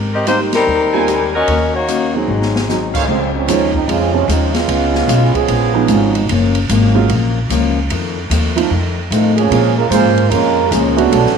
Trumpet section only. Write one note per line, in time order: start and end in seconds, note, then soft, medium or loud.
0.92 1.44 A#4 medium
0.92 1.44 C5 medium
0.92 1.44 G5 medium
0.92 1.44 G#5 medium
2.93 3.03 G#4 medium
2.93 3.03 C5 medium
2.93 3.03 C#5 medium
2.93 3.03 F5 medium